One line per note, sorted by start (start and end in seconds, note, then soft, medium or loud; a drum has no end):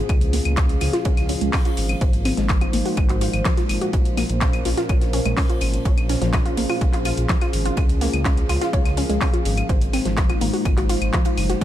0.00 11.60 A#2 medium
0.00 11.60 F3 medium
0.00 1.98 G#4 medium
0.09 0.40 C#2 loud
0.09 1.99 C#4 medium
0.09 1.99 F5 medium
0.09 kick loud
0.09 closed hi-hat medium
0.09 ride medium
0.09 claves medium
0.21 closed hi-hat medium
0.21 ride soft
0.33 0.39 A#3 medium
0.33 snare medium
0.33 open hi-hat loud
0.33 ride medium
0.45 0.76 C#2 loud
0.45 closed hi-hat medium
0.45 claves medium
0.57 0.63 C#4 medium
0.57 kick loud
0.57 snare loud
0.57 clap loud
0.57 closed hi-hat medium
0.57 ride medium
0.69 closed hi-hat medium
0.81 0.90 C#2 loud
0.81 0.87 F4 medium
0.81 snare medium
0.81 open hi-hat loud
0.81 ride medium
0.81 claves medium
0.93 0.97 F4 loud
0.93 snare medium
0.93 closed hi-hat medium
1.05 1.36 C#2 medium
1.05 1.09 C#5 medium
1.05 kick loud
1.05 closed hi-hat medium
1.05 ride medium
1.17 snare soft
1.17 closed hi-hat medium
1.17 claves medium
1.29 1.35 C#4 medium
1.29 open hi-hat loud
1.29 ride medium
1.41 1.50 C#2 medium
1.41 1.50 G#3 medium
1.41 closed hi-hat medium
1.41 ride soft
1.53 1.59 C#4 medium
1.53 kick loud
1.53 snare loud
1.53 clap loud
1.53 open hi-hat medium
1.53 claves medium
1.65 1.71 F4 medium
1.65 closed hi-hat medium
1.77 1.95 G#1 medium
1.77 open hi-hat loud
1.77 ride medium
1.89 closed hi-hat medium
1.89 claves medium
2.01 2.32 G#1 loud
2.01 3.91 G#3 medium
2.01 3.92 D#4 medium
2.01 2.05 C5 medium
2.01 3.91 C5 medium
2.01 kick loud
2.01 closed hi-hat medium
2.01 ride medium
2.13 closed hi-hat medium
2.25 2.31 C4 medium
2.25 snare medium
2.25 open hi-hat loud
2.25 ride medium
2.25 claves medium
2.37 2.68 G#1 loud
2.37 2.46 G#3 medium
2.37 snare medium
2.37 closed hi-hat medium
2.49 2.55 F3 medium
2.49 kick loud
2.49 snare loud
2.49 clap loud
2.49 closed hi-hat medium
2.49 ride medium
2.61 2.67 F4 medium
2.61 closed hi-hat soft
2.61 claves medium
2.73 2.82 G#1 loud
2.73 2.77 A#3 medium
2.73 open hi-hat loud
2.73 ride medium
2.85 2.89 F#4 medium
2.85 open hi-hat medium
2.97 3.28 G#1 medium
2.97 kick loud
2.97 closed hi-hat medium
2.97 ride medium
2.97 claves medium
3.09 3.18 F#4 medium
3.09 clap soft
3.09 closed hi-hat medium
3.21 3.30 F4 medium
3.21 open hi-hat loud
3.21 ride medium
3.33 3.42 G#1 medium
3.33 closed hi-hat medium
3.33 claves medium
3.45 3.51 F3 medium
3.45 kick loud
3.45 snare loud
3.45 clap loud
3.45 closed hi-hat medium
3.45 ride loud
3.57 3.63 F4 medium
3.57 snare soft
3.57 closed hi-hat soft
3.69 3.78 G#1 medium
3.69 open hi-hat loud
3.69 ride medium
3.69 claves medium
3.81 3.85 F#4 medium
3.81 closed hi-hat medium
3.93 4.24 A#1 loud
3.93 9.66 C#4 medium
3.93 5.84 A#4 medium
3.93 7.74 C5 medium
3.93 kick loud
3.93 closed hi-hat medium
3.93 ride medium
4.05 closed hi-hat soft
4.05 ride soft
4.17 4.23 A#3 medium
4.17 snare medium
4.17 open hi-hat loud
4.17 ride medium
4.17 claves medium
4.29 4.60 A#1 loud
4.29 closed hi-hat medium
4.41 4.47 C#4 medium
4.41 kick loud
4.41 snare loud
4.41 clap loud
4.41 closed hi-hat medium
4.41 ride medium
4.53 closed hi-hat medium
4.53 claves medium
4.65 4.74 A#1 loud
4.65 4.71 F4 medium
4.65 snare soft
4.65 open hi-hat loud
4.65 ride medium
4.77 4.81 F4 loud
4.77 snare soft
4.77 closed hi-hat medium
4.89 5.20 A#1 medium
4.89 4.93 C#5 medium
4.89 kick loud
4.89 closed hi-hat medium
4.89 ride medium
4.89 claves medium
5.01 snare soft
5.01 closed hi-hat medium
5.13 5.19 C#4 medium
5.13 open hi-hat loud
5.13 ride medium
5.25 5.34 A#1 medium
5.25 5.34 G#3 medium
5.25 closed hi-hat medium
5.25 ride soft
5.25 claves medium
5.37 5.43 C#4 medium
5.37 kick loud
5.37 snare loud
5.37 clap loud
5.37 open hi-hat medium
5.49 5.55 F4 medium
5.49 closed hi-hat medium
5.61 5.79 G#1 medium
5.61 open hi-hat loud
5.61 ride medium
5.61 claves medium
5.74 closed hi-hat medium
5.85 6.16 A#1 loud
5.85 9.66 G#4 medium
5.85 5.89 C#5 medium
5.85 kick loud
5.85 closed hi-hat medium
5.85 ride medium
5.98 closed hi-hat medium
5.98 claves medium
6.09 6.15 C#4 medium
6.09 snare medium
6.09 open hi-hat loud
6.09 ride medium
6.22 6.52 A#1 loud
6.22 6.27 F3 medium
6.22 snare medium
6.22 closed hi-hat medium
6.33 6.39 F3 medium
6.33 kick loud
6.33 snare loud
6.33 clap loud
6.33 closed hi-hat medium
6.33 ride medium
6.33 claves medium
6.46 6.51 F4 medium
6.46 closed hi-hat medium
6.57 6.66 A#1 loud
6.57 6.61 A#3 medium
6.57 open hi-hat loud
6.57 ride medium
6.70 6.73 F4 medium
6.70 open hi-hat medium
6.70 claves medium
6.81 7.12 A#1 medium
6.81 kick loud
6.81 closed hi-hat medium
6.81 ride medium
6.93 7.02 F4 medium
6.93 clap soft
6.93 closed hi-hat medium
7.05 7.14 F4 medium
7.05 open hi-hat loud
7.05 ride medium
7.05 claves soft
7.17 7.26 A#1 medium
7.17 closed hi-hat medium
7.29 7.35 F3 medium
7.29 kick loud
7.29 snare loud
7.29 clap loud
7.29 closed hi-hat medium
7.29 ride medium
7.41 7.47 F4 medium
7.41 snare soft
7.41 closed hi-hat medium
7.41 claves medium
7.53 7.71 G#1 medium
7.53 open hi-hat loud
7.53 ride medium
7.65 7.69 F4 medium
7.65 closed hi-hat medium
7.77 8.08 C#2 loud
7.77 9.68 F5 medium
7.77 kick loud
7.77 closed hi-hat medium
7.77 ride medium
7.77 claves soft
7.89 closed hi-hat medium
7.89 ride soft
8.01 8.07 A#3 medium
8.01 snare medium
8.01 open hi-hat loud
8.01 ride medium
8.13 8.44 C#2 loud
8.13 closed hi-hat medium
8.13 claves medium
8.25 8.31 C#4 medium
8.25 kick loud
8.25 snare loud
8.25 clap loud
8.25 closed hi-hat medium
8.25 ride medium
8.37 closed hi-hat medium
8.49 8.58 C#2 loud
8.49 8.55 F4 medium
8.49 snare medium
8.49 open hi-hat loud
8.49 ride medium
8.49 claves soft
8.61 8.65 F4 loud
8.61 snare medium
8.61 closed hi-hat medium
8.73 9.04 C#2 medium
8.73 8.77 C#5 medium
8.73 kick loud
8.73 closed hi-hat medium
8.73 ride medium
8.85 snare soft
8.85 closed hi-hat medium
8.85 claves soft
8.97 9.03 C#4 medium
8.97 open hi-hat loud
8.97 ride medium
9.09 9.18 C#2 medium
9.09 9.18 G#3 medium
9.09 closed hi-hat medium
9.09 ride soft
9.21 9.27 C#4 medium
9.21 kick loud
9.21 snare soft
9.21 clap loud
9.21 open hi-hat medium
9.21 ride medium
9.21 claves soft
9.33 9.39 F4 medium
9.33 closed hi-hat medium
9.45 9.63 G#1 medium
9.45 open hi-hat medium
9.45 ride medium
9.57 closed hi-hat medium
9.57 ride soft
9.57 claves soft
9.69 10.00 G#1 loud
9.69 11.60 G#3 medium
9.69 11.60 D#4 medium
9.69 9.73 C5 medium
9.69 11.64 C5 medium
9.69 kick loud
9.69 closed hi-hat medium
9.69 ride medium
9.81 closed hi-hat medium
9.93 9.99 C4 medium
9.93 snare medium
9.93 open hi-hat loud
9.93 ride medium
9.93 claves soft
10.05 10.36 G#1 loud
10.05 10.11 F3 medium
10.05 snare medium
10.05 closed hi-hat medium
10.17 10.23 F3 medium
10.17 kick loud
10.17 snare loud
10.17 clap loud
10.17 closed hi-hat medium
10.17 ride medium
10.30 10.35 F4 medium
10.30 closed hi-hat medium
10.30 claves soft
10.41 10.50 G#1 loud
10.41 10.45 A#3 medium
10.41 open hi-hat loud
10.41 ride medium
10.53 10.57 F#4 medium
10.53 open hi-hat medium
10.65 10.96 G#1 medium
10.65 kick loud
10.65 closed hi-hat medium
10.65 ride medium
10.65 claves soft
10.77 10.86 F#4 medium
10.77 clap soft
10.77 closed hi-hat medium
10.89 10.98 F4 medium
10.89 open hi-hat loud
10.89 ride medium
11.01 11.10 G#1 medium
11.01 closed hi-hat medium
11.01 ride soft
11.01 claves soft
11.13 11.19 F3 medium
11.13 kick loud
11.13 snare soft
11.13 clap loud
11.13 closed hi-hat medium
11.13 ride medium
11.25 11.31 F4 medium
11.25 closed hi-hat medium
11.25 ride medium
11.37 11.55 F#1 medium
11.37 open hi-hat loud
11.37 ride soft
11.37 claves soft
11.49 11.53 F#4 medium
11.49 snare soft
11.49 closed hi-hat medium
11.49 ride medium